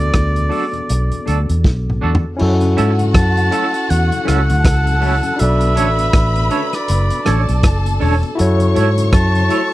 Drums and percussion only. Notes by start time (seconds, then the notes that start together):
0.14 kick, cross-stick, closed hi-hat
0.36 closed hi-hat
0.51 open hi-hat
0.73 closed hi-hat
0.89 closed hi-hat
1.12 closed hi-hat
1.27 closed hi-hat
1.49 closed hi-hat
1.64 kick, snare
1.90 mid tom
2.15 floor tom
2.39 crash
2.61 closed hi-hat
2.78 closed hi-hat
2.99 closed hi-hat
3.14 kick, cross-stick, closed hi-hat
3.37 closed hi-hat
3.52 closed hi-hat
3.74 closed hi-hat
3.90 closed hi-hat
4.12 closed hi-hat
4.28 cross-stick, closed hi-hat
4.50 closed hi-hat
4.65 kick, cross-stick, closed hi-hat
4.87 closed hi-hat
5.02 open hi-hat
5.23 closed hi-hat
5.39 closed hi-hat
5.61 closed hi-hat
5.77 closed hi-hat
5.98 closed hi-hat
6.13 kick, cross-stick, closed hi-hat
6.36 closed hi-hat
6.51 closed hi-hat
6.73 cross-stick, closed hi-hat
6.88 closed hi-hat
7.10 closed hi-hat
7.26 cross-stick, closed hi-hat
7.49 closed hi-hat
7.63 kick, cross-stick, closed hi-hat
7.86 closed hi-hat
8.01 open hi-hat
8.23 closed hi-hat
8.39 closed hi-hat
8.60 closed hi-hat
8.76 closed hi-hat
8.98 closed hi-hat
9.13 kick, cross-stick, closed hi-hat
9.35 closed hi-hat
9.50 closed hi-hat